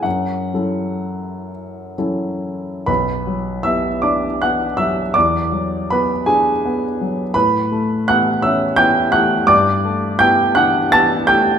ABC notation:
X:1
M:6/8
L:1/8
Q:3/8=55
K:Bm
V:1 name="Grand piano"
f3 z3 | [Bb]2 [ee'] [dd'] [ff'] [ee'] | [dd']2 [Bb] [^G^g]3 | [Bb]2 [ff'] [ee'] [gg'] [ff'] |
[dd']2 [gg'] [ff'] [aa'] [gg'] |]
V:2 name="Grand piano"
F,, [F,CEA]3 [F,CEA]2 | B,,, F, B, D B, F, | E,, F, B, D B, F, | A,, A, B, C B, A, |
G,, A, B, D B, A, |]